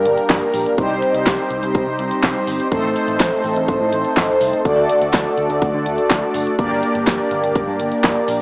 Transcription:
Already playing: G3 A#3 D4 G4 A#4
0.05 G1, closed hi-hat
0.18 closed hi-hat
0.30 G1, kick, snare, clap, closed hi-hat
0.54 A#1, open hi-hat
0.66 closed hi-hat
0.78 C2 G3 C4 D#4 G4 C5, kick, closed hi-hat
0.90 C2
1.02 closed hi-hat
1.15 C2, closed hi-hat
1.27 C2, kick, snare, clap, closed hi-hat
1.51 C2, closed hi-hat
1.63 C2, closed hi-hat
1.75 C2, kick, closed hi-hat
1.87 C3
1.99 C2, closed hi-hat
2.11 closed hi-hat
2.23 C2, kick, snare, clap, closed hi-hat
2.47 G1, open hi-hat
2.60 closed hi-hat
2.72 A1 A3 C4 D#4 A4 C5, kick, closed hi-hat
2.84 A1
2.96 closed hi-hat
3.08 A1, closed hi-hat
3.20 A1, kick, snare, clap, closed hi-hat
3.44 A1, open hi-hat
3.56 A1, closed hi-hat
3.68 A1, kick, closed hi-hat
3.81 A2
3.92 A1, closed hi-hat
4.05 closed hi-hat
4.17 A1, kick, snare, clap, closed hi-hat
4.41 C2, open hi-hat
4.53 closed hi-hat
4.65 D2 A3 D4 F#4 A4 D5, kick, closed hi-hat
4.77 D2
4.89 closed hi-hat
5.02 D2, closed hi-hat
5.14 D2, kick, snare, clap, closed hi-hat
5.38 D2, closed hi-hat
5.50 D2, closed hi-hat
5.62 D2, kick, closed hi-hat
5.74 D3
5.86 D2, closed hi-hat
5.98 closed hi-hat
6.10 D2, kick, snare, clap, closed hi-hat
6.34 F#1, open hi-hat
6.47 closed hi-hat
6.59 G1 A#3 D4 G4 A#4 D5, kick, closed hi-hat
6.71 G1
6.83 closed hi-hat
6.95 G1, closed hi-hat
7.07 G1, kick, snare, clap, closed hi-hat
7.31 G1, closed hi-hat
7.44 G1, closed hi-hat
7.55 G1, kick, closed hi-hat
7.68 G2
7.80 G1, closed hi-hat
7.92 closed hi-hat
8.04 G1, kick, snare, clap, closed hi-hat
8.28 A#1, open hi-hat

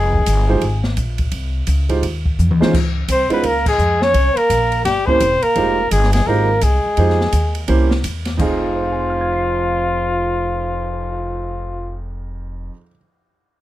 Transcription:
Already playing: F1 G#3 G#4
0.13 kick
0.26 G1, kick, hi-hat pedal, ride
0.49 G#3 D#4 F4 G4 C5
0.61 G#1, kick, ride
0.84 snare
0.97 A#1, kick, hi-hat pedal, ride
1.18 kick, ride
1.31 C2, kick, ride
1.67 C#2, kick, hi-hat pedal, ride
1.89 G#3 D#4 F4 G4 C5, kick, ride
2.03 D#2, kick, ride
2.26 kick
2.39 F2, hi-hat pedal, mid tom
2.51 D#2, mid tom
2.60 C2 G#3 C#4 D#4 F4 C5, snare
2.73 C#2, kick, crash
3.08 C2 C4 C5, kick, hi-hat pedal, ride
3.30 G#3 B3 C#4 D#4 F4 B4 C5, muted upright bass stroke, ride
3.43 C#2 A#3 A#4, kick, ride
3.66 G#3 G#4, kick, crash
3.79 F2, hi-hat pedal
4.01 C#4 C#5, snare
4.14 C2, kick, ride
4.36 A#3 A#4, muted upright bass stroke, ride
4.50 A#1, kick, hi-hat pedal, ride
4.72 ride
4.85 G1 G3 G4, kick, snare, ride
5.06 A#3 C4 C#4 E4 G4 C5, kick
5.20 E1, kick, hi-hat pedal, ride
5.42 A#3 A#4, muted upright bass stroke, ride
5.55 F1 G#3 D#4 F4 G4 C5, kick, ride
5.90 G1 G#3 G#4, kick, hi-hat pedal, ride
6.03 snare
6.13 G#3 G#4, snare, ride
6.26 G#1 G#3 A#3 D#4 F4 G4 A#4 C5, kick
6.61 C2 G#3 G#4, kick, hi-hat pedal, ride
6.85 muted upright bass stroke
6.97 F2 G#3 D#4 F4 G4 C5, kick, ride
7.10 snare
7.21 snare
7.32 D#2, kick, hi-hat pedal, ride
7.55 ride
7.68 C2 A#3 C#4 E4 G4 C5, kick, ride
7.91 snare
8.04 E2, kick, hi-hat pedal, ride
8.25 snare, ride
8.37 F1 F2 F3 D#4 F4 G#4, kick, crash
8.61 cymbal swell
8.76 C5
8.83 F5
8.92 G#5
9.00 C6
9.10 F6
9.21 G#6
9.33 C7

